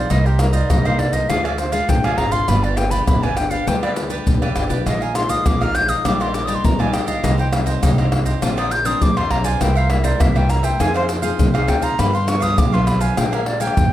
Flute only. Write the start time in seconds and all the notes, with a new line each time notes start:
Already playing: D5
0.10 D#5
0.26 G4
0.40 A#4
0.54 D5
0.70 D#5
0.86 F5
0.99 D5
1.13 D#5
1.29 F5
1.45 G#4
1.59 C5
1.72 F5
1.89 G5
2.05 G#5
2.17 A#5
2.32 C6
2.48 B5
2.64 D5
2.77 G5
2.91 B5
3.07 B5
3.23 G#5
3.36 G5
3.50 F5
3.67 G5
3.83 D5
4.86 D#5
5.02 G#5
5.15 C6
5.30 D#6
5.46 D6
5.62 F6
5.75 G6
5.89 D#6
6.06 D6
6.21 C6
6.34 D6
6.45 D#6
6.55 C6
6.65 A#5
6.80 G#5
6.93 G5
7.08 F5
7.24 D#5
7.39 G5
8.58 D#6
8.71 G6
8.86 D#6
9.02 D6
9.17 C6
9.31 A#5
9.45 G#5
9.61 G5
9.77 F5
9.90 E5
10.04 D5
10.21 E5
10.37 G5
10.50 A#5
10.64 G5
10.81 G#5
10.96 C5
11.56 F5
11.69 G5
11.83 A#5
12.00 B5
12.15 C6
12.28 C#6
12.42 D#6
12.59 D6
12.74 C6
12.87 B5
13.01 G#5
13.18 G5
13.34 A#4
13.46 D5
13.61 G5